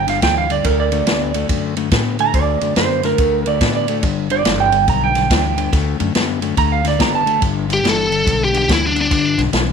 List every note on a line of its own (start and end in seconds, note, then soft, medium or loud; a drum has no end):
0.00 0.20 G1 medium
0.07 0.21 G2 medium
0.07 0.21 D3 medium
0.07 0.23 F5 medium
0.07 snare soft
0.07 ride medium
0.22 0.63 D2 medium
0.22 0.47 G2 medium
0.22 0.47 E3 loud
0.22 0.37 G5 medium
0.22 kick medium
0.22 snare loud
0.22 ride medium
0.38 0.51 F5 medium
0.50 0.63 G2 medium
0.50 0.64 D3 medium
0.50 0.65 D5 medium
0.50 ride medium
0.64 1.05 D2 loud
0.64 0.89 D3 medium
0.64 0.90 A3 medium
0.64 0.79 A#4 medium
0.64 kick loud
0.64 ride medium
0.80 1.62 D5 medium
0.92 1.06 D3 medium
0.92 1.06 A3 loud
0.92 ride medium
1.06 1.47 D2 loud
1.06 1.32 D3 medium
1.06 1.32 B3 loud
1.06 snare loud
1.06 ride medium
1.34 1.48 D3 medium
1.34 1.48 A3 medium
1.34 ride medium
1.49 1.90 F#2 medium
1.49 1.74 D3 medium
1.49 1.74 A3 medium
1.49 kick loud
1.49 ride medium
1.77 1.91 D3 medium
1.77 1.91 A3 medium
1.77 ride medium
1.91 2.32 A2 medium
1.91 2.16 D3 loud
1.91 2.16 B3 loud
1.91 kick medium
1.91 snare loud
1.91 ride medium
2.19 2.33 D3 medium
2.19 2.33 A3 medium
2.19 2.34 A#5 loud
2.19 ride medium
2.34 2.60 D2 loud
2.34 2.59 D3 medium
2.34 2.59 A3 medium
2.34 2.76 D5 loud
2.34 kick loud
2.34 ride medium
2.61 2.76 F#2 medium
2.61 2.75 D3 medium
2.61 2.75 A3 loud
2.61 ride medium
2.76 3.17 F#2 medium
2.76 3.01 D3 medium
2.76 3.01 B3 loud
2.76 3.04 C5 loud
2.76 snare loud
2.76 ride medium
3.03 3.17 D3 medium
3.03 3.17 A3 medium
3.03 3.46 A#4 medium
3.03 snare soft
3.03 ride medium
3.18 3.59 D2 medium
3.18 3.44 D3 loud
3.18 3.44 A3 loud
3.18 kick loud
3.18 ride medium
3.46 3.60 D3 medium
3.46 3.60 A3 medium
3.46 3.74 D5 medium
3.46 ride medium
3.61 4.01 A2 medium
3.61 3.86 D3 medium
3.61 3.86 B3 loud
3.61 kick medium
3.61 snare loud
3.61 ride medium
3.75 3.98 D5 loud
3.88 4.02 D3 medium
3.88 4.02 A3 medium
3.88 ride medium
4.03 4.43 G1 loud
4.03 4.28 G2 medium
4.03 4.28 D3 loud
4.03 kick loud
4.03 ride medium
4.30 4.44 G2 medium
4.30 4.44 D3 medium
4.30 4.59 D5 loud
4.30 ride medium
4.45 4.86 G1 loud
4.45 4.70 G2 medium
4.45 4.70 E3 loud
4.45 snare loud
4.45 ride medium
4.60 4.87 G5 loud
4.72 4.86 G2 medium
4.72 4.86 D3 medium
4.72 ride medium
4.88 5.28 B1 loud
4.88 5.12 G2 medium
4.88 5.13 D3 medium
4.88 5.02 A#5 loud
4.88 kick loud
4.88 ride medium
5.04 5.71 G5 medium
5.15 5.29 G2 medium
5.15 5.29 D3 medium
5.15 snare soft
5.15 ride medium
5.30 5.70 D2 medium
5.30 5.55 G2 medium
5.30 5.55 E3 medium
5.30 kick medium
5.30 snare loud
5.30 ride medium
5.57 5.71 G2 medium
5.57 5.71 D3 medium
5.57 ride medium
5.72 5.98 D2 loud
5.72 5.97 D3 medium
5.72 5.97 A3 medium
5.72 kick loud
5.72 snare soft
5.72 ride medium
5.99 6.14 F#2 medium
5.99 6.13 D3 medium
5.99 6.13 A3 loud
5.99 ride medium
6.15 6.55 F#2 medium
6.15 6.39 D3 loud
6.15 6.40 B3 loud
6.15 snare loud
6.15 ride medium
6.42 6.56 D3 medium
6.42 6.56 A3 medium
6.42 ride medium
6.57 6.98 D2 medium
6.57 6.81 D3 medium
6.57 6.82 A3 loud
6.57 6.71 A#5 loud
6.57 kick loud
6.57 ride medium
6.72 6.85 F5 loud
6.84 6.98 D3 medium
6.84 6.98 A3 medium
6.84 7.00 D5 medium
6.84 snare soft
6.84 ride medium
6.99 7.40 F#1 medium
6.99 7.24 D3 loud
6.99 7.24 B3 loud
6.99 7.14 A#5 loud
6.99 kick medium
6.99 snare loud
6.99 ride medium
7.15 7.42 A5 loud
7.25 7.40 D3 medium
7.25 7.40 A3 medium
7.25 ride medium
7.41 7.82 G1 loud
7.41 7.66 G2 medium
7.41 7.66 D3 medium
7.41 kick loud
7.41 ride medium
7.69 7.82 G2 medium
7.69 7.83 D3 medium
7.69 snare soft
7.69 ride medium
7.73 7.89 G4 loud
7.83 8.24 G1 loud
7.83 8.08 G2 medium
7.83 8.08 E3 loud
7.83 snare loud
7.83 ride medium
7.89 8.41 A4 medium
8.10 8.23 G2 medium
8.10 8.24 D3 medium
8.10 ride medium
8.24 8.67 B1 medium
8.24 8.50 G2 medium
8.24 8.50 D3 medium
8.24 kick loud
8.24 ride medium
8.45 8.56 G4 medium
8.52 8.66 G2 medium
8.52 8.67 D3 medium
8.52 ride medium
8.58 8.70 G4 medium
8.68 9.09 D2 medium
8.68 8.93 G2 medium
8.68 8.93 E3 medium
8.68 kick medium
8.68 snare loud
8.68 ride medium
8.73 8.84 E4 medium
8.86 8.98 D4 medium
8.95 9.09 G2 medium
8.95 9.09 D3 medium
8.95 ride medium
9.01 9.40 D4 loud
9.10 9.37 G1 loud
9.10 9.35 G2 medium
9.10 9.35 D3 loud
9.10 kick loud
9.10 ride medium
9.38 9.52 B1 medium
9.38 9.51 G2 medium
9.38 9.52 D3 loud
9.38 snare soft
9.38 ride medium
9.52 9.72 B1 loud
9.52 9.72 G2 medium
9.52 9.72 E3 loud
9.52 snare loud
9.52 ride medium